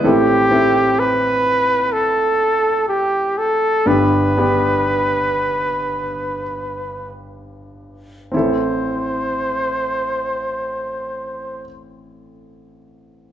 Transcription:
0.04 A1 A2 C4 E4 G4 A4
0.51 C4 E4 A4
0.99 B4
1.93 A4
2.88 G4
3.38 A4
3.86 G1 G2 B3 D4 G4 B4
4.37 B3 D4 G4
8.32 A1 C4 E4 C5
8.36 A4

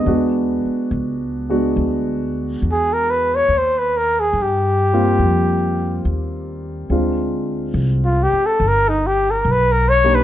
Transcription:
Already playing: D#5
0.06 E2 G#3 B3 D4 F#4
0.65 muted upright bass stroke
0.91 C#2
1.50 G#3 B3 D4 F#4
1.76 D2
2.62 E2
2.71 G#4
2.93 A#4
3.10 B4
3.35 C#5
3.48 D#2
3.58 C5
3.78 B4
3.97 A#4
4.20 G#4
4.33 G2
4.42 G4
4.93 G3 A#3 C4 F4
5.19 F2
6.05 D#2
6.90 D2 G#3 C4 D4 F4
7.74 C2
8.05 F4
8.22 G4
8.33 muted upright bass stroke
8.46 A4
8.60 G1
8.68 A#4
8.89 D#4
9.06 G4
9.31 A#4
9.45 B1
9.51 B4
9.71 A#4
9.89 C#5
10.04 A#3 D4 D#4 G4
10.15 B4

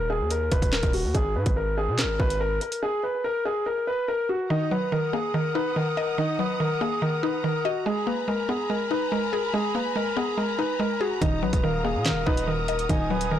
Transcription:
Already playing: D#1
0.10 G#4
0.20 D#2
0.31 A#4, closed hi-hat
0.52 D#1 B4, kick, closed hi-hat
0.62 D#1, kick, closed hi-hat
0.73 A#4, snare, clap
0.83 D#1, kick, closed hi-hat
0.93 F#4, open hi-hat
1.04 D#2
1.15 G#1 G#4, kick, closed hi-hat
1.36 G#2 B4
1.46 G#1, kick, closed hi-hat
1.57 A#4
1.78 G#4
1.88 B2
1.98 A#4, snare, clap, closed hi-hat
2.04 G#1
2.20 G#1 B4, kick
2.30 closed hi-hat
2.40 A#4
2.61 A#4, closed hi-hat
2.72 closed hi-hat
2.83 G#4
3.03 B4
3.24 A#4
3.45 G#4
3.66 A#4
3.87 B4
4.08 A#4
4.29 F#4
4.50 D#3 D#4 F#5 A#5 D#6
4.71 F#3 B4
4.92 D#3 A#4
5.13 A#3 G#4
5.34 D#3 A#4
5.55 D#4 B4
5.76 D#3 A#4
5.97 A#4 D#5
6.18 D#3 D#4
6.39 F#3 B4
6.60 D#3 A#4
6.81 A#3 G#4
7.02 D#3 A#4
7.23 D#4 B4
7.44 D#3 A#4
7.65 F#4 D#5
7.86 G#3 G#4 G#5 B5
8.07 A#3 B4
8.28 G#3 A#4
8.49 B3 G#4
8.70 G#3 A#4
8.91 D#4 B4
9.12 G#3 A#4
9.33 G#4 A#4
9.54 G#3 G#4
9.75 A#3 B4
9.96 G#3 A#4
10.17 B3 G#4
10.37 G#3 A#4
10.59 D#4 B4
10.80 G#3 A#4
11.01 F#4 G#4
11.22 D#1 D#3 D#4 F#4 D#6, kick, closed hi-hat
11.42 A#1 F#3 B4
11.53 D#1, kick, closed hi-hat
11.64 D#3 A#4 F5
11.84 A#3 G#4
11.95 A#2
12.05 D#3 A#4, snare, clap, closed hi-hat
12.11 D#1
12.26 D#1 D#4 B4 D#5, kick
12.37 closed hi-hat
12.47 D#3 A#4
12.68 A#4 D#5, closed hi-hat
12.79 closed hi-hat
12.89 D#1 D#3 D#4 G#5, kick, closed hi-hat
13.10 F#3 B4
13.21 closed hi-hat
13.31 D#3 A#4

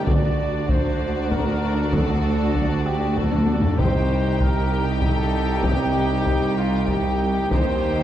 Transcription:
0.05 D2 D3 D4 F#4 D5, taiko
0.69 C5, taiko
1.31 A#4, taiko
1.93 A4, taiko
2.55 taiko
2.85 G4
3.16 A4, taiko
3.32 taiko high
3.46 taiko high
3.63 taiko low
3.78 C2 G3 D#4 G4 C5 G5, taiko
4.40 A#4, taiko
5.02 A4, taiko
5.64 G4, taiko
6.26 taiko
6.58 F4
6.88 G4, taiko
7.50 D#2 G3 D#4 G4 C5 G5, taiko

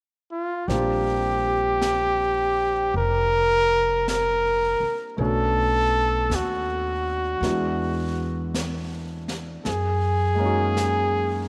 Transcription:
0.32 F4
0.68 A#1 G3 A#3 C4 D4 F4 G4, brush sweep, snare
1.81 brush sweep, snare, hi-hat pedal
2.94 F1 A#4, brush sweep
4.08 A#4, brush sweep, snare, hi-hat pedal
4.80 muted upright bass stroke
5.17 B1 A3 B3 C#4 A4, brush sweep
5.21 D4 F#4
6.30 D#2, brush sweep, snare, hi-hat pedal
6.35 F#4
7.41 E2 G#3 B3 D4 E4 F#4, brush sweep, snare
8.54 brush sweep, snare, hi-hat pedal
9.28 snare
9.65 F#2 G#4, brush sweep, snare
10.35 G#3 A#3
10.40 C#4 D#4
10.45 F#4
10.77 brush sweep, snare, hi-hat pedal

